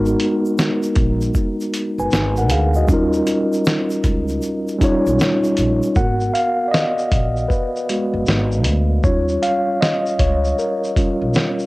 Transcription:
Already playing: G#1 G#3 B3 D#4 F#4 A#4
0.05 shaker
0.20 closed hi-hat, shaker
0.45 shaker
0.58 snare, shaker
0.83 shaker
0.95 A#1, kick, closed hi-hat, shaker
1.21 shaker
1.34 kick, shaker
1.60 shaker
1.74 closed hi-hat, shaker
1.98 F#1 B4 G#5, shaker
2.11 G#1, shaker
2.13 snare, shaker
2.36 A#4 F#5, shaker
2.49 D2 G#4 F5, closed hi-hat, shaker
2.74 F#4 D#5, shaker
2.87 D#2 G3 C#4 D#4, kick, shaker
2.91 F4 A#4
3.13 shaker
3.27 closed hi-hat, shaker
3.53 shaker
3.65 snare, shaker
3.67 shaker
3.90 shaker
4.04 C#2, kick, closed hi-hat, shaker
4.28 shaker
4.42 shaker
4.68 shaker
4.78 G3 C#4 D#4, kick, closed hi-hat, shaker
4.83 F4 C#5
5.06 B1, shaker
5.19 shaker
5.21 snare, shaker
5.44 shaker
5.57 A#1, closed hi-hat, shaker
5.82 shaker
5.96 G#1 B3 F#4 A#4 F#5, kick, shaker
6.20 shaker
6.34 F5, closed hi-hat, shaker
6.68 D5 D#5
6.74 snare, shaker
6.98 shaker
7.12 A#1, kick, closed hi-hat, shaker
7.37 shaker
7.48 B4, kick, shaker
7.76 shaker
7.89 G#3 B3 F#4, closed hi-hat, shaker
8.14 F#1
8.26 G#1, snare, shaker
8.52 shaker
8.64 D2, closed hi-hat, shaker
9.04 D#2 G3 C#4 F4 C#5, kick, shaker
9.28 shaker
9.42 F5, closed hi-hat, shaker
9.81 D#5, snare, shaker
10.06 shaker
10.19 C#2 C#5, kick, closed hi-hat, shaker
10.44 shaker
10.58 A#4, shaker
10.84 shaker
10.96 G3 C#4 F4, kick, closed hi-hat, shaker
11.22 B1
11.34 snare, shaker
11.59 shaker

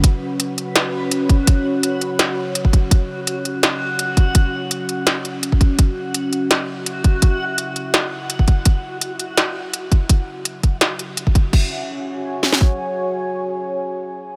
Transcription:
Already playing: C#4 F#4
0.04 F#4 C#5, kick, closed hi-hat
0.40 closed hi-hat
0.58 closed hi-hat
0.76 snare, closed hi-hat
1.11 closed hi-hat
1.29 kick, closed hi-hat
1.47 kick, closed hi-hat
1.83 closed hi-hat
2.01 closed hi-hat
2.19 snare, closed hi-hat
2.55 closed hi-hat
2.65 kick
2.73 kick, closed hi-hat
2.91 kick, closed hi-hat
3.27 closed hi-hat
3.45 closed hi-hat
3.63 snare, closed hi-hat
3.99 closed hi-hat
4.17 kick, closed hi-hat
4.35 kick, closed hi-hat
4.71 closed hi-hat
4.89 closed hi-hat
5.07 snare, closed hi-hat
5.25 closed hi-hat
5.43 closed hi-hat
5.52 kick
5.61 kick, closed hi-hat
5.79 E5, kick, closed hi-hat
6.14 closed hi-hat
6.33 closed hi-hat
6.51 snare, closed hi-hat
6.86 closed hi-hat
7.04 kick, closed hi-hat
7.22 kick, closed hi-hat
7.58 closed hi-hat
7.76 closed hi-hat
7.94 snare, closed hi-hat
8.30 closed hi-hat
8.39 kick
8.48 kick, closed hi-hat
8.65 kick, closed hi-hat
9.01 closed hi-hat
9.19 closed hi-hat
9.37 snare, closed hi-hat
9.74 closed hi-hat
9.92 kick, closed hi-hat
10.09 kick, closed hi-hat
10.45 closed hi-hat
10.63 kick, closed hi-hat
10.81 snare, closed hi-hat
10.99 closed hi-hat
11.17 closed hi-hat
11.27 kick
11.35 kick, closed hi-hat
11.53 F#4 C#5 G#5, kick, crash
12.43 snare
12.53 snare
12.61 kick

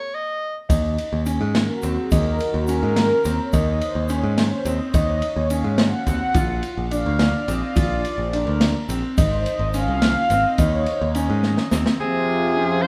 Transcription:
Already playing: C#5
0.14 D#5
0.69 D#2 D#4, kick, ride, shaker
0.98 ride, shaker
1.13 D#2
1.26 C#4, ride, shaker
1.41 G#2
1.55 A#4, snare, ride
1.69 F#4
1.82 D#2 C4, ride, shaker
1.97 G#4
2.11 D#2 D#4 A#4, kick, ride, shaker
2.39 F#4, ride, shaker
2.54 D#2
2.67 C#4 A#4, ride, shaker
2.83 G#2
2.96 snare, ride
3.25 D#2 C4 C5, snare, ride, shaker
3.39 C#5
3.53 D#2 D#4 D#5, kick, ride, shaker
3.81 C5, ride, shaker
3.95 D#2
4.09 C#4 C#5, ride, shaker
4.23 G#2
4.38 C5, snare, ride
4.65 D#2 C4 D#5, ride, shaker
4.81 C#5
4.94 D#2 D#4 D#5, kick, ride, shaker
5.22 C#5, ride
5.36 D#2
5.50 C#4 F5, ride, shaker
5.64 G#2
5.78 F#5, snare, ride
6.07 D#2 C4, kick, snare, ride, shaker
6.34 A#1 F4, kick, ride, shaker
6.63 ride, shaker
6.77 A#1
6.91 D4 F5, ride, shaker
7.06 D2
7.19 D5, snare, ride
7.48 A#1 C4 D#5, ride, shaker
7.61 F5
7.75 A#1 F4 D5, kick, ride, shaker
8.05 ride, shaker
8.18 A#1 C5
8.31 D4 A#4, ride
8.47 D2
8.61 snare, ride
8.89 A#1 C4, ride, shaker
9.17 G#1 D#4 C5, kick, ride, shaker
9.46 D#5, ride, shaker
9.59 G#1
9.74 C#4 F5, snare, ride, shaker
9.88 C2
10.02 snare, ride
10.29 G#1 C4 D#5, snare, ride, shaker
10.58 D#2 D#4 C#5, kick, ride, shaker
10.86 C5, ride
11.01 D#2 A#4
11.15 C#4 D#5, ride, shaker
11.30 G#2
11.43 snare
11.57 snare
11.71 D#2 C4, snare, shaker
11.86 snare
12.00 C3 F3 C4 F4 G#4 C5
12.57 C#4
12.82 F3 C5

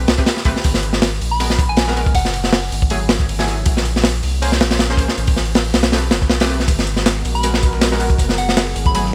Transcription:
0.08 C2, snare, open hi-hat
0.18 A3 C4 G4 B4, kick
0.26 snare, open hi-hat
0.37 snare
0.45 B1 A3 C4 G4 B4, kick, open hi-hat
0.56 snare
0.64 G#1, kick, open hi-hat
0.74 snare
0.83 open hi-hat
0.93 snare
1.02 snare, open hi-hat
1.21 A#1, open hi-hat
1.31 B5
1.40 G#3 B3 F#4 A#4, open hi-hat
1.50 snare
1.59 kick, open hi-hat
1.69 G#5
1.77 snare, open hi-hat
1.88 G#3 B3 F#4 A#4, snare
1.96 G#3 B3 F#4 A#4, open hi-hat
2.06 kick
2.15 F#1 F#5, kick, open hi-hat
2.25 snare
2.34 open hi-hat
2.44 snare
2.53 snare, open hi-hat
2.72 G#1, open hi-hat
2.82 kick
2.90 F#3 A3 E4 G#4, open hi-hat
3.09 snare, open hi-hat
3.20 kick
3.29 open hi-hat
3.39 F#3 A3 E4 G#4, snare
3.47 F#3 A3 E4 G#4, open hi-hat
3.66 A#1, kick, open hi-hat
3.77 snare
3.85 open hi-hat
3.96 snare
4.04 snare, open hi-hat
4.23 C2, open hi-hat
4.42 A#3 C#4 G#4 C5, open hi-hat
4.52 snare
4.60 A#1, snare, open hi-hat
4.71 snare, open hi-hat
4.79 snare, open hi-hat
4.90 A#3 C#4 G#4 C5, snare
4.97 A#3 C#4 G#4 C5, kick, open hi-hat
5.08 snare
5.17 A1, open hi-hat
5.27 kick, open hi-hat
5.36 snare
5.45 open hi-hat
5.55 snare, open hi-hat
5.74 B1, snare, open hi-hat
5.83 snare, open hi-hat
5.92 A3 C4 G4 B4, snare, open hi-hat
6.11 G1, snare, open hi-hat
6.22 kick
6.30 B1, snare, open hi-hat
6.40 A3 C4 G4 B4, snare, open hi-hat
6.49 A3 C4 G4 B4, open hi-hat
6.60 snare
6.68 G#1, kick, closed hi-hat, open hi-hat
6.79 snare, closed hi-hat
6.87 closed hi-hat, open hi-hat
6.97 G#3 B3 F#4 A#4, snare
7.06 snare, closed hi-hat, open hi-hat
7.25 A#1, closed hi-hat, open hi-hat
7.35 B5, closed hi-hat
7.43 G#3 B3 F#4 A#4, closed hi-hat, open hi-hat
7.54 snare
7.63 kick, closed hi-hat, open hi-hat
7.73 snare
7.81 snare, closed hi-hat, open hi-hat
7.92 G#3 B3 F#4 A#4, snare
8.00 G#3 B3 F#4 A#4, closed hi-hat, open hi-hat
8.10 kick
8.18 F#1, kick, closed hi-hat, open hi-hat
8.29 snare
8.38 F#5, closed hi-hat, open hi-hat
8.48 F#3 A3 E4 G#4 F#5, snare
8.57 snare, closed hi-hat, open hi-hat
8.76 G#1, closed hi-hat, open hi-hat
8.86 B5, kick
8.95 F#3 A3 E4 G#4 B5, closed hi-hat, open hi-hat
9.05 snare

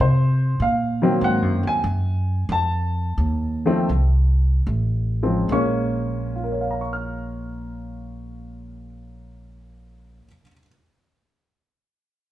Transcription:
0.00 C3 C5
0.60 A#2 F5
1.02 D#3 F#3 A#3 C4
1.21 G#2 F#5
1.42 F#2
1.63 D#2
1.67 G#5
1.84 F#2
2.49 F2 A5
3.18 D#2
3.66 D#3 F3 A3 C4
3.89 C2
4.67 A1
5.23 C#3 F3 G#3 C4
5.49 A#1 A#2 G#3 A#3 C#4 C#6
6.36 F4
6.44 A#4
6.52 C#5
6.61 F5
6.71 A#5
6.81 C#6
6.93 F6

